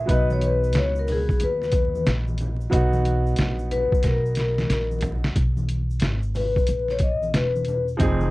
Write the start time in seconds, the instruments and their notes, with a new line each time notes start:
Already playing: vibraphone E5
0.05 upright bass B1, upright piano F#3 B3 D#4, kick, closed hi-hat
0.10 upright piano B4, vibraphone D#5, shaker
0.30 vibraphone C#5, high conga, shaker
0.41 vibraphone B4, closed hi-hat, high conga, shaker
0.64 shaker
0.73 upright bass C#2, snare, closed hi-hat, low conga, shaker
0.77 vibraphone C#5
0.96 vibraphone A#4, shaker
1.08 open hi-hat, low conga, shaker
1.12 vibraphone G#4
1.29 muted upright bass stroke, kick, shaker
1.40 upright bass D#2, vibraphone B4, closed hi-hat, shaker
1.62 snare, shaker
1.72 kick, closed hi-hat, shaker
1.95 high conga, shaker
2.06 upright bass A#1, snare, closed hi-hat, shaker
2.28 high conga, shaker
2.38 closed hi-hat, low conga, shaker
2.61 shaker
2.70 upright bass B1, upright piano F#3 B3 D#4, kick, closed hi-hat, shaker
2.74 upright piano F#4
2.93 high conga, shaker
3.05 closed hi-hat, high conga, shaker
3.26 shaker
3.36 upright bass A#1, snare, closed hi-hat, low conga, shaker
3.59 shaker
3.71 vibraphone B4, closed hi-hat, low conga, shaker
3.92 muted upright bass stroke, kick, shaker
4.03 upright bass B1, vibraphone A#4, kick, snare, closed hi-hat, shaker
4.26 shaker
4.35 snare, closed hi-hat, shaker
4.58 snare, high conga, shaker
4.70 upright bass A#1, snare, closed hi-hat, shaker
4.91 high conga, shaker
5.01 closed hi-hat, floor tom, low conga, shaker
5.24 snare, shaker
5.36 upright bass B1, kick, closed hi-hat, shaker
5.57 high conga, shaker
5.69 closed hi-hat, high conga, shaker
5.91 shaker
6.00 upright bass G#1, snare, closed hi-hat, low conga, shaker
6.23 shaker
6.35 vibraphone B4, open hi-hat, low conga, shaker
6.56 muted upright bass stroke, kick, shaker
6.67 upright bass A#1, closed hi-hat, shaker
6.88 vibraphone C#5, snare, shaker
6.99 kick, closed hi-hat, shaker
7.03 vibraphone D#5
7.22 high conga, shaker
7.34 upright bass E1, vibraphone B4, snare, closed hi-hat, shaker
7.56 high conga, shaker
7.65 closed hi-hat, low conga, shaker
7.88 shaker
7.97 upright bass F1, upright piano F3 C4 D#4, kick, closed hi-hat, shaker
8.02 upright piano G#4
8.20 high conga, shaker